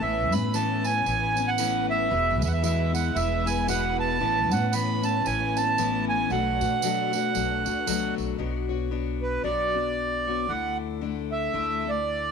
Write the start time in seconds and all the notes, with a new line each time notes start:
Already playing: A3
0.01 A1 A2 E3 B3 C#4 E4 B4 E5
0.32 A2 B3 C#4 E4 B5, tambourine
0.53 A2 E3 B3 C#4 E4 A5, tambourine
0.84 B3 C#4 E4 G#5, tambourine
1.06 A1 E3 B3 C#4 E4, tambourine
1.36 B3 C#4 E4, tambourine
1.48 F#5
1.58 A2 E3 B3 C#4 E4, tambourine
1.90 E5
2.10 E1 E2 B2 E3 G#3 B3 E4
2.40 E2 E3 G#3 B3 E4 E5, tambourine
2.47 F#5
2.53 E5
2.62 E2 B2 E3 G#3 B3 E4 E5, tambourine
2.93 E3 G#3 B3 E4 F#5, tambourine
3.14 E1 E3 G#3 B3 E4 E5, tambourine
3.46 E3 G#3 B3 E4 G#5, tambourine
3.67 E2 B2 E3 G#3 B3 E4 F#5, tambourine
3.99 A5
4.20 A1 A2 E3 A3 B3 C#4 E4
4.51 A2 B3 C#4 E4 F#5, tambourine
4.72 A2 E3 B3 C#4 E4 B5, tambourine
5.03 B3 C#4 E4 A5, tambourine
5.25 A1 E3 B3 C#4 E4 G#5, tambourine
5.56 B3 C#4 E4 A5, tambourine
5.78 A2 E3 B3 C#4 E4, tambourine
6.09 G#5
6.30 B1 B2 F#3 A3 D4 F#4 F#5, tambourine
6.61 B2 A3 D4 F#4, tambourine
6.82 B2 F#3 A3 D4 F#4, tambourine
7.13 A3 D4 F#4, tambourine
7.34 B1 F#3 A3 D4 F#4, tambourine
7.65 D2 A3 D4 F#4, tambourine
7.87 C#2 B2 F#3 A3 D4 F#4, tambourine
8.18 B1, tambourine
8.38 B1 B2 F#3 B3 D4 F#4 C#5
8.69 B3 D4 F#4 C#5
8.91 B3 D4 F#4 C#5
9.22 B4
9.43 B1 B2 F#3 B3 D4 F#4 C#5 D5
9.75 B3 D4 F#4
10.27 B3 D4 F#4 C#5
10.48 D2 D3 A3 D4 E4 F#5
11.01 D3 A3 D4 E4
11.32 E5
11.53 D2 D3 A3 D4 E4
11.84 A3 D4 E4
11.89 D5